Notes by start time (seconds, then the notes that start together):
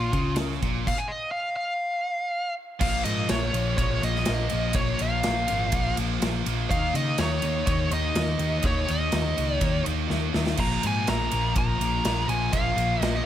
Already playing: A#2 F4
0.13 C#2 C#3, kick, ride
0.36 snare, ride
0.51 snare
0.62 A#1 A#2, kick, ride
0.87 F5, kick, crash
0.98 G#5
1.08 D#5
1.31 F5
1.56 F5
2.81 A#1 A#2 F3 A#3 F5, kick, crash
3.04 G#2 A#2 F3 A#3 D#5, ride
3.29 A#1 A#2 F3 A#3 C#5, snare, ride
3.53 A#1 A#2 F3 A#3, ride
3.77 A#1 A#2 F3 A#3 C#5, kick, ride
4.02 A#1 A#2 F3 A#3 D#5, ride
4.16 snare
4.25 A#1 A#2 F3 A#3, snare, ride
4.49 A#1 A#2 F3 A#3, ride
4.73 A#1 A#2 A#3 C#5, kick, ride
4.77 F3 A#3
4.99 A#1 A#2 F3 A#3 F5, ride
5.23 A#1 A#2 F3 A#3, snare, ride
5.48 G#1 A#2 F3 A#3, ride
5.72 A#1 A#2 F3 A#3, kick, ride
5.97 A#1 A#2 F3 A#3, ride
6.21 A#1 A#2 F3 A#3, snare, ride
6.46 A#1 A#2 F3 A#3, ride
6.71 D#2 D#3 A#3 D#4 F5, kick, ride
6.94 C#3 D#3 A#3 D#4 D#5, ride
7.18 D#2 D#3 A#3 D#4 C#5, snare, ride
7.42 D#2 D#3 A#3 D#4, ride
7.67 D#2 D#3 A#3 D#4 C#5, kick, ride
7.91 D#2 D#3 A#3 D#4 D#5, ride
8.15 D#2 D#3 A#3 D#4, snare, ride
8.39 D#2 D#3 A#3 D#4, ride
8.63 D#2 D#3 A#3 D#4 C#5, kick, ride
8.87 D#2 D#3 A#3 D#4 D#5, ride
9.12 D#2 D#3 A#3 D#4, snare, ride
9.38 C#2 D#3 A#3 D#4, ride
9.56 C#5
9.60 D#2 D#3 A#3 D#4, kick, ride
9.83 D#2 D#3 A#3 D#4, ride
10.08 D#2 D#3 A#3 D#4, snare
10.33 D#2 D#3 A#3 D#4, snare
10.47 snare
10.57 A#1 A#2 F3 A#3 A#5, kick, crash
10.83 G#2 A#2 F3 A#3 G#5, ride
11.07 A#1 A#2 F3 A#3 A#5, snare, ride
11.31 A#1 A#2 F3 A#3, ride
11.56 A#1 A#2 F3 A#3 A#5, kick, ride
11.81 A#1 A#2 F3 A#3, ride
12.05 A#1 A#2 F3 A#3, snare, ride
12.28 A#1 A#2 F3 A#3 G#5, ride
12.52 A#1 A#2 F3 A#3 F5, kick, ride
12.77 A#1 A#2 F3 A#3, ride
13.01 A#1 A#2 F3 A#3 D#5, snare, ride
13.17 D#5